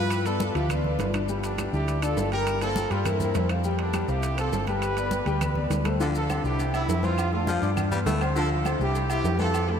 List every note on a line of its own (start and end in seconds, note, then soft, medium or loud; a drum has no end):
0.00 0.49 G2 medium
0.00 0.20 F3 medium
0.00 0.20 F4 medium
0.00 0.25 G4 medium
0.00 0.24 B4 loud
0.00 0.21 F5 medium
0.10 high conga soft
0.10 high timbale loud
0.10 claves medium
0.10 maracas medium
0.25 0.50 B3 medium
0.25 0.56 F4 medium
0.25 0.56 A4 loud
0.25 0.50 B4 medium
0.25 0.50 D5 medium
0.25 high conga soft
0.25 high timbale medium
0.25 maracas medium
0.40 high conga loud
0.40 low timbale medium
0.40 maracas medium
0.54 0.96 D2 medium
0.54 0.67 F3 medium
0.54 0.70 E4 medium
0.54 0.67 F4 medium
0.54 0.69 G4 medium
0.54 0.68 F5 medium
0.54 high conga soft
0.54 high timbale medium
0.54 maracas soft
0.69 0.82 B3 medium
0.69 1.12 D4 medium
0.69 1.12 F4 medium
0.69 0.82 B4 medium
0.69 0.83 D5 medium
0.69 high conga soft
0.69 low conga medium
0.69 high timbale medium
0.69 claves medium
0.69 maracas medium
0.84 1.09 B3 medium
0.84 1.09 B4 medium
0.84 1.09 D5 medium
0.84 high conga soft
0.84 low conga medium
0.99 1.67 G1 medium
0.99 high conga medium
0.99 high timbale medium
0.99 low timbale medium
0.99 maracas medium
1.14 1.26 D4 medium
1.14 1.27 D5 medium
1.14 high conga medium
1.14 high timbale medium
1.14 claves medium
1.14 maracas soft
1.28 1.53 G3 medium
1.28 1.53 G4 medium
1.28 1.53 G5 medium
1.28 high conga soft
1.28 maracas medium
1.43 1.72 B3 medium
1.43 1.72 D4 medium
1.43 high conga soft
1.43 high timbale medium
1.43 maracas medium
1.58 1.70 G3 medium
1.58 1.70 G4 medium
1.58 1.71 G5 medium
1.58 high conga medium
1.58 high timbale medium
1.58 low timbale medium
1.58 claves medium
1.58 maracas medium
1.73 2.14 D2 medium
1.73 1.97 D4 medium
1.73 2.01 E4 medium
1.73 2.01 G4 medium
1.73 1.97 D5 medium
1.73 maracas soft
1.87 high conga soft
1.87 high timbale medium
1.87 maracas medium
2.02 2.27 D4 medium
2.02 2.31 F4 medium
2.02 2.31 A4 loud
2.02 2.27 D5 medium
2.02 high conga soft
2.02 high timbale medium
2.02 claves medium
2.02 maracas medium
2.17 2.85 G1 medium
2.17 high conga soft
2.17 low timbale medium
2.17 maracas medium
2.32 2.56 G3 medium
2.32 2.56 G4 medium
2.32 2.60 G4 medium
2.32 2.60 A#4 loud
2.32 2.56 G5 medium
2.32 high timbale medium
2.32 maracas soft
2.46 high conga soft
2.46 high timbale medium
2.46 claves medium
2.46 maracas medium
2.61 2.86 A#3 medium
2.61 2.90 F4 medium
2.61 2.89 A4 loud
2.61 2.86 A#4 medium
2.61 2.86 C5 medium
2.61 high conga soft
2.61 high timbale medium
2.61 maracas medium
2.76 high conga loud
2.76 low timbale medium
2.76 maracas medium
2.90 3.32 G2 medium
2.90 3.03 G3 medium
2.90 3.06 D4 medium
2.90 3.06 F4 medium
2.90 3.03 G4 medium
2.90 3.03 G5 medium
2.90 high conga soft
2.90 high timbale medium
2.90 maracas soft
3.05 3.18 A#3 medium
3.05 3.50 C4 medium
3.05 3.50 E4 medium
3.05 3.18 A#4 medium
3.05 3.18 C5 medium
3.05 high conga soft
3.05 low conga medium
3.05 high timbale loud
3.05 claves medium
3.05 maracas medium
3.20 3.44 A#3 medium
3.20 3.44 A#4 medium
3.20 3.45 C5 medium
3.20 high conga soft
3.20 low conga medium
3.20 maracas medium
3.34 4.03 F2 medium
3.34 high conga medium
3.34 high timbale medium
3.34 low timbale medium
3.34 maracas medium
3.49 3.62 C4 medium
3.49 3.62 C5 medium
3.49 3.62 F5 medium
3.49 high timbale medium
3.49 claves medium
3.49 maracas soft
3.64 3.89 G3 medium
3.64 3.89 G4 medium
3.64 3.89 G5 medium
3.64 high conga soft
3.64 maracas medium
3.79 4.07 B3 medium
3.79 4.07 D4 medium
3.79 high conga soft
3.79 high timbale medium
3.93 4.06 G3 medium
3.93 4.06 G4 medium
3.93 4.06 G5 medium
3.93 high conga medium
3.93 high timbale loud
3.93 low timbale medium
3.93 claves medium
3.93 maracas medium
4.08 4.49 C2 medium
4.08 4.33 C4 medium
4.08 4.39 E4 medium
4.08 4.39 G4 medium
4.08 4.33 C5 medium
4.08 4.33 F5 medium
4.08 maracas soft
4.23 high conga soft
4.23 high timbale medium
4.23 maracas medium
4.38 4.62 C4 medium
4.38 4.66 F4 medium
4.38 4.66 A4 loud
4.38 4.63 C5 medium
4.38 4.63 F5 medium
4.38 high conga soft
4.38 high timbale medium
4.38 claves medium
4.38 maracas medium
4.52 5.21 G1 medium
4.52 high conga soft
4.52 low timbale medium
4.52 maracas medium
4.67 4.92 G3 medium
4.67 5.67 G4 medium
4.67 4.92 G4 medium
4.67 5.67 B4 loud
4.67 4.93 G5 medium
4.67 high conga medium
4.67 high timbale medium
4.67 maracas soft
4.82 high conga soft
4.82 high timbale medium
4.82 claves medium
4.82 maracas medium
4.96 5.22 B3 medium
4.96 5.22 B4 medium
4.96 5.22 D5 medium
4.96 high conga soft
4.96 high timbale medium
4.96 maracas medium
5.11 high conga medium
5.11 low timbale medium
5.11 maracas medium
5.26 5.67 D2 medium
5.26 5.38 G3 medium
5.26 5.38 G4 medium
5.26 5.39 G5 medium
5.26 high conga soft
5.26 high timbale medium
5.26 maracas soft
5.41 5.53 B3 medium
5.41 5.53 B4 medium
5.41 5.53 D5 medium
5.41 high conga soft
5.41 low conga medium
5.41 high timbale loud
5.41 claves medium
5.41 maracas medium
5.55 5.80 B3 medium
5.55 5.80 B4 medium
5.55 5.80 D5 medium
5.55 high conga soft
5.55 low conga medium
5.70 6.39 D2 medium
5.70 high conga medium
5.70 high timbale medium
5.70 low timbale medium
5.70 maracas medium
5.85 5.97 A3 medium
5.85 5.97 A4 medium
5.85 5.98 C5 medium
5.85 high conga medium
5.85 high timbale loud
5.85 claves medium
5.85 maracas soft
6.00 6.64 D3 medium
6.00 6.24 F3 medium
6.00 6.24 F4 medium
6.00 6.08 F4 medium
6.00 6.08 A4 loud
6.00 6.25 F5 medium
6.00 high conga soft
6.00 low agogo medium
6.00 maracas medium
6.15 6.43 F4 medium
6.15 6.43 A4 loud
6.15 high conga soft
6.15 maracas medium
6.29 6.42 C4 medium
6.29 6.42 C5 medium
6.29 6.42 C6 medium
6.29 high conga medium
6.29 low timbale medium
6.29 low agogo loud
6.29 claves medium
6.29 maracas medium
6.44 6.85 C2 medium
6.44 6.69 G3 medium
6.44 6.73 E4 medium
6.44 6.69 G4 medium
6.44 6.72 G4 medium
6.44 6.69 G5 medium
6.44 maracas soft
6.59 high conga soft
6.59 low agogo medium
6.59 maracas medium
6.74 7.02 C4 medium
6.74 6.98 E4 medium
6.74 7.02 E4 loud
6.74 6.99 E5 medium
6.74 6.99 E6 medium
6.74 high conga soft
6.74 low agogo loud
6.74 claves medium
6.74 maracas medium
6.88 7.57 F2 loud
6.88 high conga soft
6.88 low timbale medium
6.88 maracas medium
7.03 7.26 E3 medium
7.03 7.27 C4 medium
7.03 7.34 C4 medium
7.03 7.33 F4 loud
7.03 7.28 C5 medium
7.03 7.28 C6 medium
7.03 high conga medium
7.03 low agogo medium
7.03 maracas soft
7.18 high conga soft
7.18 low agogo loud
7.18 claves medium
7.18 maracas medium
7.33 7.45 A3 medium
7.33 7.75 D4 medium
7.33 7.74 F4 medium
7.33 7.45 A4 medium
7.33 7.45 A5 medium
7.33 high conga soft
7.47 7.60 F3 medium
7.47 7.71 F3 medium
7.47 7.60 F4 medium
7.47 7.60 F5 medium
7.47 high conga loud
7.47 low timbale medium
7.47 low agogo medium
7.47 maracas medium
7.62 8.03 G2 medium
7.62 7.86 D4 medium
7.62 7.86 D5 medium
7.62 7.87 D6 medium
7.62 high conga soft
7.62 low agogo medium
7.62 maracas soft
7.77 high conga soft
7.77 low conga medium
7.77 low agogo loud
7.77 claves medium
7.77 maracas medium
7.92 7.99 G3 medium
7.92 8.16 B3 medium
7.92 8.16 B4 medium
7.92 8.16 B5 medium
7.92 high conga soft
7.92 low conga medium
7.92 maracas medium
8.06 8.74 D2 medium
8.06 8.22 A3 medium
8.06 high conga medium
8.06 low timbale medium
8.06 low agogo medium
8.06 maracas medium
8.21 8.34 C4 medium
8.21 8.34 C5 medium
8.21 8.34 C6 medium
8.21 low agogo loud
8.21 claves medium
8.21 maracas soft
8.35 9.00 D3 medium
8.35 8.60 F3 medium
8.35 8.60 F4 medium
8.35 8.50 F4 medium
8.35 8.51 A4 loud
8.35 8.60 F5 medium
8.35 high conga soft
8.35 low agogo medium
8.35 maracas medium
8.50 8.79 F4 medium
8.50 8.79 A4 loud
8.50 high conga soft
8.65 8.78 C4 medium
8.65 8.78 C5 medium
8.65 8.78 C6 medium
8.65 high conga medium
8.65 low timbale medium
8.65 low agogo loud
8.65 claves medium
8.65 maracas medium
8.79 9.21 C2 medium
8.79 9.05 G3 medium
8.79 9.09 E4 medium
8.79 9.05 G4 medium
8.79 9.09 G4 loud
8.79 9.05 G5 medium
8.79 maracas soft
8.95 high conga soft
8.95 low agogo medium
8.95 maracas medium
9.09 9.34 E4 medium
9.09 9.38 E4 medium
9.09 9.38 G4 loud
9.09 9.34 E5 medium
9.09 9.34 E6 medium
9.09 high conga soft
9.09 low agogo loud
9.09 claves medium
9.09 maracas medium
9.24 9.80 F2 medium
9.24 high conga soft
9.24 low timbale medium
9.24 maracas medium
9.38 9.62 E3 medium
9.38 9.63 C4 medium
9.38 9.67 F4 medium
9.38 9.67 A4 loud
9.38 9.64 C5 medium
9.38 9.64 C6 medium
9.38 high conga medium
9.38 low agogo medium
9.38 maracas soft
9.53 high conga soft
9.53 low agogo loud
9.53 claves medium
9.53 maracas medium
9.68 9.80 A3 medium
9.68 9.80 C4 medium
9.68 9.80 E4 medium
9.68 9.80 A4 medium
9.68 9.80 A5 medium
9.68 high conga soft